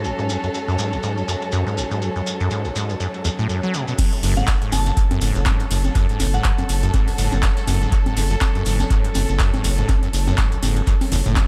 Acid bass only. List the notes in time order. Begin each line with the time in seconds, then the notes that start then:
0.05 F#1
0.19 G#2
0.30 F#2
0.44 F#2
0.68 F#2
0.79 G#2
0.93 F#1
1.04 G#2
1.18 F#2
1.28 F#2
1.53 F#2
1.67 G#2
1.77 F#1
1.91 G#2
2.02 F#2
2.16 F#2
2.40 F#2
2.51 G#2
2.65 F#1
2.76 G#2
2.90 F#2
3.00 F#2
3.25 E2
3.39 A2
3.49 F#2
3.63 F#3
3.74 B2
3.88 B2
3.99 F#2
4.23 F#2
4.37 G#2
4.48 F#1
4.62 G#2
4.72 F#2
4.86 F#2
5.11 F#2
5.22 G#2
5.36 F#1
5.46 G#2
5.60 F#2
5.71 F#2
5.95 F#2
6.09 G#2
6.20 F#1
6.34 G#2
6.45 F#2
6.58 F#2
6.83 F#2
6.94 G#2
7.08 F#1
7.18 G#2
7.32 F#2
7.43 F#2
7.67 F#2
7.81 G#2
7.92 F#1
8.06 G#2
8.17 F#2
8.31 F#2
8.55 F#2
8.66 G#2
8.80 F#1
8.90 G#2
9.04 F#2
9.15 F#2
9.40 F#2
9.54 G#2
9.64 F#1
9.78 G#2
9.89 F#2
10.03 F#2
10.27 F#2
10.52 F#1
10.63 G#2
10.77 F#2
10.87 F#2
11.12 E2
11.26 A2